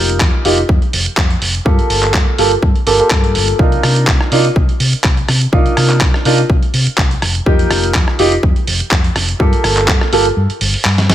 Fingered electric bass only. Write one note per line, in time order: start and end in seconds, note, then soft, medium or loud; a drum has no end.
0.00 0.22 F1 loud
0.21 0.29 F2 loud
0.45 0.62 F1 medium
0.69 0.78 F2 medium
0.93 1.06 F1 medium
1.06 muted fingered electric bass stroke soft
1.17 1.34 F2 medium
1.42 1.58 F1 medium
1.66 1.78 G2 medium
1.79 muted fingered electric bass stroke soft
1.90 2.16 G1 medium
2.14 2.23 G2 loud
2.38 2.55 G1 medium
2.62 2.71 G2 medium
2.87 2.99 G1 medium
3.00 muted fingered electric bass stroke soft
3.11 3.36 G2 medium
3.35 3.52 G1 medium
3.59 3.76 C2 medium
3.83 4.09 C3 medium
4.08 4.16 C2 loud
4.32 4.48 C3 medium
4.56 4.65 C2 loud
4.80 4.92 C3 medium
4.93 muted fingered electric bass stroke soft
5.04 5.21 C2 medium
5.29 5.45 C3 medium
5.53 5.65 C2 medium
5.66 muted fingered electric bass stroke soft
5.77 6.03 C3 medium
6.01 6.10 C2 loud
6.25 6.42 C3 medium
6.50 6.58 C2 medium
6.62 muted fingered electric bass stroke soft
6.74 6.86 C3 medium
6.87 muted fingered electric bass stroke soft
6.98 7.15 C2 medium
7.22 7.39 F1 medium
7.46 7.63 F2 loud
7.71 7.96 F1 medium
7.95 8.03 F2 loud
8.19 8.36 F1 medium
8.43 8.52 F2 medium
8.68 8.80 F1 medium
8.81 muted fingered electric bass stroke soft
8.92 9.08 F2 medium
9.16 9.32 F1 medium
9.40 9.52 G2 loud
9.53 muted fingered electric bass stroke soft
9.64 9.90 G1 loud
9.88 9.97 G2 loud
10.13 10.29 G1 medium
10.37 10.45 G2 medium
10.50 muted fingered electric bass stroke soft
10.61 10.73 G1 loud
10.74 muted fingered electric bass stroke soft
10.85 11.11 G2 medium
11.09 11.15 G1 medium